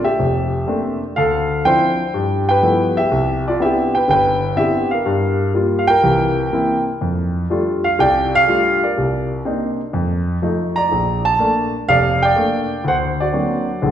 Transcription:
0.04 0.97 G4 medium
0.04 0.98 E5 medium
0.19 0.61 F1 medium
0.67 1.02 A3 soft
0.67 1.02 A#3 soft
0.67 1.03 C4 soft
0.67 1.03 D4 medium
1.16 1.59 D2 medium
1.16 1.63 A4 medium
1.16 1.67 F5 medium
1.65 2.00 F3 soft
1.65 2.00 C4 soft
1.65 2.00 D4 soft
1.65 2.00 E4 medium
1.65 2.12 C5 medium
1.65 2.43 G5 medium
2.14 2.57 G2 medium
2.49 2.95 B4 medium
2.49 2.98 G5 medium
2.63 2.98 F3 medium
2.63 2.98 G3 soft
2.63 2.98 A3 soft
2.63 2.98 B3 soft
2.63 2.98 E4 medium
2.97 3.43 G4 medium
2.97 3.42 E5 medium
3.11 3.54 C2 medium
3.48 3.62 F4 medium
3.48 3.61 D5 medium
3.60 3.95 B3 medium
3.60 3.95 C4 soft
3.60 3.95 D4 soft
3.60 3.95 E4 medium
3.60 3.92 E5 medium
3.65 3.94 G4 medium
3.95 4.10 B4 medium
3.95 4.09 G5 medium
4.08 4.51 G1 medium
4.08 4.55 G5 medium
4.13 4.57 B4 medium
4.56 4.92 B3 soft
4.56 4.92 C4 soft
4.56 4.92 D4 soft
4.56 4.92 E4 medium
4.56 4.90 G4 medium
4.56 4.88 E5 medium
4.91 5.53 A#4 soft
4.91 5.51 F5 medium
5.06 5.49 G2 medium
5.54 5.90 G3 soft
5.54 5.90 A#3 soft
5.54 5.90 F4 soft
5.79 5.89 F5 medium
5.87 6.83 A#4 medium
5.87 6.82 G5 loud
6.03 6.46 C2 medium
6.03 6.46 E3 medium
6.53 6.88 A#3 soft
6.53 6.88 C4 soft
6.53 6.88 E4 medium
7.01 7.44 F2 medium
7.50 7.85 G3 soft
7.50 7.85 A3 soft
7.50 7.85 D4 soft
7.50 7.85 F4 medium
7.84 7.98 F5 medium
7.99 8.41 C2 medium
7.99 8.41 C3 medium
7.99 8.82 D5 medium
7.99 8.31 G5 loud
8.35 8.79 F5 loud
8.48 8.83 G3 medium
8.48 8.83 A3 soft
8.48 8.83 D4 soft
8.48 8.83 F4 medium
8.83 9.76 A#4 soft
8.83 9.28 D5 medium
8.97 9.39 C2 medium
9.45 9.80 A#3 soft
9.45 9.80 C4 soft
9.45 9.80 D4 soft
9.45 9.80 D#4 medium
9.93 10.36 F2 medium
10.42 10.77 F3 medium
10.42 10.77 A3 soft
10.42 10.77 D#4 medium
10.76 11.70 D5 medium
10.76 11.21 A#5 medium
10.92 11.34 A#1 medium
11.25 11.70 A5 loud
11.39 11.74 A3 medium
11.39 11.74 A#3 medium
11.39 11.75 D4 medium
11.88 12.31 F1 medium
11.88 12.23 D5 medium
11.88 12.23 F5 loud
12.22 12.83 D5 medium
12.22 12.82 G5 loud
12.36 12.71 A3 medium
12.36 12.71 A#3 soft
12.36 12.72 D4 medium
12.84 13.27 D2 medium
12.84 13.80 C5 medium
12.84 12.95 F#5 medium
13.20 13.91 F#4 medium
13.20 13.91 D5 medium
13.33 13.68 F#3 medium
13.33 13.68 A#3 soft
13.33 13.68 C4 soft
13.33 13.69 D4 medium
13.82 13.91 A#1 medium
13.82 13.91 D3 medium

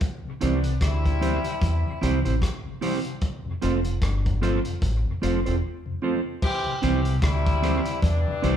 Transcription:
0.01 kick loud
0.01 closed hi-hat medium
0.25 0.34 C3 medium
0.41 0.77 C2 medium
0.41 0.73 D3 medium
0.41 0.54 E3 medium
0.41 0.54 G3 medium
0.41 0.73 B3 medium
0.41 0.58 C4 medium
0.41 0.54 C4 medium
0.41 0.73 D4 medium
0.41 0.58 E4 medium
0.41 0.58 G4 medium
0.41 0.59 C5 medium
0.41 closed hi-hat medium
0.64 0.74 C3 medium
0.64 closed hi-hat medium
0.81 1.38 D2 medium
0.81 1.98 C3 loud
0.81 1.98 G3 loud
0.81 1.98 E4 loud
0.81 kick loud
0.81 cross-stick loud
0.81 closed hi-hat medium
1.05 1.14 C3 medium
1.05 kick medium
1.05 closed hi-hat soft
1.21 1.34 E3 medium
1.21 1.34 G3 medium
1.21 1.38 C4 medium
1.21 1.34 C4 medium
1.21 1.38 E4 medium
1.21 1.39 G4 medium
1.21 1.39 C5 medium
1.21 closed hi-hat medium
1.44 1.54 C3 medium
1.44 closed hi-hat medium
1.62 1.83 E2 medium
1.62 kick loud
1.62 closed hi-hat medium
1.86 1.94 C3 medium
2.01 2.23 C2 medium
2.01 2.15 C3 medium
2.01 2.14 E3 medium
2.01 2.15 G3 medium
2.01 2.14 G3 medium
2.01 2.18 C4 medium
2.01 2.14 C4 medium
2.01 2.15 E4 medium
2.01 2.19 E4 medium
2.01 2.19 G4 medium
2.01 2.19 C5 loud
2.01 closed hi-hat medium
2.25 2.41 A1 medium
2.25 2.34 C3 medium
2.25 2.35 C4 medium
2.25 2.35 E4 medium
2.25 2.35 G4 medium
2.25 2.34 C5 medium
2.25 closed hi-hat soft
2.42 kick loud
2.42 cross-stick loud
2.42 closed hi-hat medium
2.66 2.74 C3 medium
2.81 2.94 E3 medium
2.81 2.94 G3 medium
2.81 2.98 C4 medium
2.81 2.94 C4 medium
2.81 2.99 E4 medium
2.81 2.99 G4 medium
2.81 2.99 C5 loud
2.81 open hi-hat medium
3.05 3.14 C3 medium
3.05 closed hi-hat soft
3.21 kick loud
3.21 closed hi-hat medium
3.45 3.54 F2 medium
3.45 3.54 C3 medium
3.61 3.98 F1 medium
3.61 3.74 F3 medium
3.61 3.74 A3 medium
3.61 3.78 C4 medium
3.61 3.75 C4 medium
3.61 3.79 F4 medium
3.61 3.79 A4 medium
3.61 3.79 C5 medium
3.61 closed hi-hat medium
3.85 3.94 F2 medium
3.85 3.94 C3 medium
3.85 closed hi-hat medium
4.02 4.58 G1 medium
4.02 kick loud
4.02 cross-stick loud
4.02 closed hi-hat medium
4.25 4.34 F2 medium
4.25 4.34 C3 medium
4.25 kick medium
4.25 closed hi-hat soft
4.41 4.54 F3 medium
4.41 4.54 A3 medium
4.41 4.59 C4 medium
4.41 4.55 C4 medium
4.41 4.59 F4 medium
4.41 4.59 A4 medium
4.41 4.59 C5 loud
4.41 cross-stick medium
4.41 closed hi-hat medium
4.65 4.74 F2 medium
4.65 4.74 C3 medium
4.65 closed hi-hat medium
4.82 5.03 A1 medium
4.82 kick loud
4.82 closed hi-hat medium
5.05 5.14 F2 medium
5.05 5.14 C3 medium
5.22 5.44 F1 medium
5.22 5.35 F3 medium
5.22 5.35 A3 medium
5.22 5.39 C4 medium
5.22 5.35 C4 medium
5.22 5.39 F4 medium
5.22 5.39 A4 medium
5.22 5.40 C5 medium
5.22 closed hi-hat medium
5.46 5.61 E1 medium
5.46 5.56 C4 medium
5.46 5.55 F4 medium
5.46 5.55 A4 medium
5.46 5.55 C5 medium
5.46 closed hi-hat medium
5.86 5.95 F2 medium
5.86 5.95 C3 medium
6.02 6.15 F3 medium
6.02 6.15 A3 medium
6.02 6.19 C4 medium
6.02 6.15 C4 medium
6.02 6.19 F4 medium
6.02 6.20 A4 medium
6.02 6.20 C5 medium
6.42 6.74 E3 loud
6.42 6.74 C4 loud
6.42 6.74 G4 loud
6.42 kick loud
6.42 crash loud
6.66 6.75 C3 medium
6.82 7.19 C2 medium
6.82 6.95 E3 medium
6.82 7.14 E3 medium
6.82 6.95 G3 medium
6.82 7.14 C4 medium
6.82 6.99 C4 medium
6.82 6.95 C4 medium
6.82 6.99 E4 loud
6.82 7.14 G4 medium
6.82 7.00 G4 medium
6.82 7.00 C5 medium
6.82 closed hi-hat medium
7.05 7.15 C3 medium
7.05 closed hi-hat medium
7.22 7.79 D2 medium
7.22 7.98 C3 loud
7.22 7.98 G3 loud
7.22 7.98 E4 loud
7.22 kick loud
7.22 cross-stick loud
7.22 closed hi-hat medium
7.46 7.55 C3 medium
7.46 kick medium
7.46 closed hi-hat soft
7.62 7.75 E3 medium
7.62 7.75 G3 medium
7.62 7.79 C4 medium
7.62 7.75 C4 medium
7.62 7.80 E4 medium
7.62 7.80 G4 medium
7.62 7.80 C5 medium
7.62 cross-stick medium
7.62 closed hi-hat medium
7.86 7.95 C3 medium
7.86 closed hi-hat medium
8.02 8.24 E2 medium
8.02 8.57 G2 loud
8.02 8.57 E3 loud
8.02 8.57 D4 loud
8.02 kick loud
8.02 closed hi-hat medium
8.27 8.35 C3 medium
8.42 8.57 C2 medium
8.42 8.55 E3 medium
8.42 8.55 G3 medium
8.42 8.57 C4 medium
8.42 8.56 C4 medium
8.42 8.57 E4 medium
8.42 8.57 G4 medium
8.42 8.57 C5 loud
8.42 closed hi-hat medium

